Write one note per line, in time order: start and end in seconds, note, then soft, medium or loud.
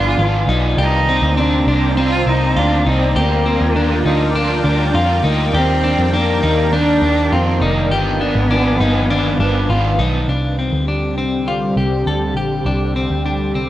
0.00 0.17 G1 loud
0.00 0.19 F3 soft
0.00 0.20 B3 medium
0.00 0.19 D4 medium
0.00 0.50 F4 loud
0.00 0.76 F4 medium
0.00 0.76 B4 medium
0.00 0.76 D5 medium
0.00 0.76 G#5 medium
0.18 0.47 G#1 medium
0.18 0.48 D#3 medium
0.18 0.49 F3 medium
0.18 0.49 B3 medium
0.18 0.49 F4 medium
0.23 0.46 D4 medium
0.47 0.77 B1 medium
0.47 0.79 B3 medium
0.47 0.78 D4 medium
0.47 0.79 D#4 medium
0.53 0.79 F3 medium
0.77 1.20 C2 medium
0.77 1.08 C3 medium
0.77 1.09 D#3 medium
0.77 1.08 A#3 medium
0.77 3.14 C4 medium
0.77 1.41 D#4 loud
0.77 1.08 G4 medium
0.77 3.14 C5 medium
0.77 7.88 D5 medium
0.77 3.14 A#5 medium
0.82 1.06 D4 medium
1.07 1.39 A#3 soft
1.07 1.36 C4 medium
1.07 1.37 D4 medium
1.12 1.38 D#3 soft
1.22 1.65 D2 medium
1.37 1.67 C3 medium
1.37 1.68 D#3 medium
1.37 1.68 A#3 medium
1.37 1.67 C4 medium
1.37 1.98 D4 medium
1.42 1.65 D4 medium
1.67 2.24 C2 medium
1.67 1.98 A#3 soft
1.67 1.97 D4 medium
1.72 1.97 D#3 soft
1.97 2.27 C3 medium
1.97 2.28 D#3 medium
1.97 2.28 A#3 medium
1.97 2.26 C4 medium
1.97 2.25 D4 medium
1.97 2.31 F4 loud
2.26 2.55 C2 loud
2.26 2.58 A#3 medium
2.26 2.57 C4 medium
2.26 2.56 D4 medium
2.26 2.60 D#4 loud
2.31 2.56 D#3 medium
2.55 2.85 D2 medium
2.55 2.86 C3 medium
2.55 2.87 D#3 medium
2.55 2.87 A#3 medium
2.55 2.87 D4 loud
2.55 2.86 F4 medium
2.60 2.84 D4 medium
2.85 3.15 C2 medium
2.85 3.17 A#3 soft
2.85 3.19 C4 medium
2.85 3.16 D4 medium
2.85 3.16 D#4 medium
2.91 3.17 D#3 soft
3.16 3.58 D2 medium
3.16 3.46 D3 medium
3.16 3.46 G3 medium
3.16 4.08 A#3 loud
3.16 3.47 A#3 medium
3.16 5.52 F4 medium
3.16 3.44 F4 medium
3.16 3.46 G4 loud
3.16 7.88 A#4 medium
3.16 7.87 G5 medium
3.45 3.77 A#3 soft
3.45 3.76 C4 medium
3.45 3.75 F4 medium
3.50 3.75 G3 soft
3.61 4.03 D#2 medium
3.75 4.05 D3 medium
3.75 4.06 G3 medium
3.75 4.06 A#3 medium
3.75 4.05 D4 medium
3.80 4.03 F4 medium
4.04 4.62 D2 medium
4.04 4.35 A#3 soft
4.04 5.25 D4 medium
4.04 4.35 D#4 medium
4.04 4.35 F4 medium
4.10 4.34 G3 soft
4.34 4.64 D3 medium
4.34 4.65 G3 medium
4.34 4.65 A#3 medium
4.34 4.63 D4 loud
4.34 4.62 F4 medium
4.63 4.93 D2 loud
4.63 4.95 A#3 soft
4.63 4.94 D4 medium
4.63 4.94 F4 medium
4.69 4.94 G3 soft
4.93 5.23 F2 medium
4.93 5.24 D3 medium
4.93 5.25 G3 medium
4.93 5.25 A#3 medium
4.93 5.24 F4 medium
4.98 5.22 F4 medium
5.23 5.52 D2 medium
5.23 5.55 A#3 medium
5.23 5.54 D#4 medium
5.23 5.53 F4 medium
5.29 5.53 G3 medium
5.53 5.96 D#2 loud
5.53 5.83 D#3 medium
5.53 10.25 D#3 medium
5.53 5.84 G3 medium
5.53 5.85 A#3 medium
5.53 6.16 C4 loud
5.53 5.81 D4 medium
5.53 5.84 G4 medium
5.82 6.14 A#3 soft
5.82 6.13 D4 medium
5.82 6.12 D4 medium
5.88 6.13 G3 soft
5.99 6.41 F2 medium
6.11 6.42 D#3 medium
6.11 6.43 G3 medium
6.11 6.76 A#3 medium
6.11 6.42 D4 medium
6.16 6.43 A#3 medium
6.16 6.40 D4 medium
6.41 7.00 D#2 medium
6.41 6.73 A#3 soft
6.41 6.72 D4 medium
6.41 6.72 D#4 medium
6.47 6.72 G3 soft
6.71 7.02 D#3 medium
6.71 7.03 G3 medium
6.71 7.03 A#3 medium
6.71 7.01 D4 medium
6.71 7.35 D4 loud
6.76 7.00 D4 medium
7.01 7.30 D#2 loud
7.01 7.33 A#3 medium
7.01 7.32 D4 medium
7.07 7.31 G3 medium
7.30 7.61 F2 medium
7.30 7.61 D#3 medium
7.30 7.62 G3 medium
7.30 7.65 C4 loud
7.30 7.62 F4 medium
7.34 7.62 A#3 medium
7.34 7.59 D4 medium
7.60 7.91 F1 loud
7.60 7.92 A#3 medium
7.60 7.91 D4 medium
7.60 7.91 D#4 medium
7.66 7.92 G3 medium
7.90 8.34 G1 loud
7.90 8.21 G2 medium
7.90 8.21 D#3 medium
7.90 8.22 F3 medium
7.90 9.66 B3 loud
7.90 8.21 B3 medium
7.90 8.18 D4 medium
7.90 8.21 G4 loud
7.90 10.27 B4 medium
7.90 10.27 F5 medium
7.90 10.27 G#5 medium
8.19 8.51 B3 soft
8.19 8.50 D4 medium
8.19 8.49 D4 medium
8.24 8.50 F3 soft
8.35 8.78 G#1 loud
8.48 8.79 D#3 medium
8.48 8.81 F3 medium
8.48 8.80 D4 medium
8.52 8.80 B3 medium
8.52 8.77 D4 medium
8.78 9.37 G1 medium
8.78 9.11 B3 medium
8.78 9.09 D4 medium
8.78 9.10 D#4 medium
8.84 9.10 F3 medium
9.09 9.40 G2 medium
9.09 9.40 D#3 medium
9.09 9.40 F3 loud
9.09 9.40 B3 loud
9.09 9.39 D4 loud
9.09 9.37 D4 medium
9.39 9.68 G1 loud
9.39 9.70 B3 medium
9.39 9.69 D4 medium
9.39 9.70 D4 medium
9.44 9.68 F3 medium
9.67 9.98 G#1 medium
9.67 9.98 D#3 medium
9.67 9.99 F3 medium
9.67 10.00 F4 medium
9.71 10.00 B3 medium
9.71 9.97 D4 medium
9.98 10.27 B1 medium
9.98 10.30 B3 medium
9.98 10.28 D4 medium
9.98 10.29 D#4 medium
10.03 10.31 F3 medium
10.28 10.71 C2 medium
10.28 13.69 D3 medium
10.28 13.69 G3 medium
10.28 13.69 C4 medium
10.28 10.58 D4 medium
10.28 13.69 G4 medium
10.59 10.88 C4 medium
10.72 11.17 D2 medium
10.88 11.17 D4 medium
11.17 11.74 C2 medium
11.17 11.48 C4 medium
11.48 11.77 F4 medium
11.76 12.05 C2 medium
11.76 12.07 G4 medium
12.06 12.37 D2 medium
12.06 12.36 A4 medium
12.37 12.65 A#1 medium
12.37 12.67 G4 medium
12.65 13.08 C2 medium
12.65 12.96 D4 medium
12.96 13.25 C4 medium
13.10 13.55 D2 medium
13.26 13.55 D4 medium
13.55 13.69 C2 medium
13.55 13.69 C4 medium